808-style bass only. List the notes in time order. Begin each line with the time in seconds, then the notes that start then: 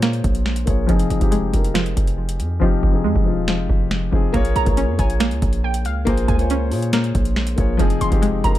Already playing: A#2
0.24 A#1
0.67 A#1
0.89 F1
1.10 F1
1.21 F1
1.54 F1
1.97 F1
2.40 F2
2.62 F1
2.83 F1
3.05 F2
3.16 F1
3.37 D#1
3.53 F1
3.69 F1
4.13 F1
4.34 A#1
4.56 A#1
4.67 A#1
4.88 F2
4.99 A#1
5.31 C#2
5.42 A#1
5.85 C#2
6.07 A#1
6.28 C#2
6.72 A#2
7.15 A#1
7.58 A#1
7.79 F1
8.01 F1
8.12 F1
8.44 F1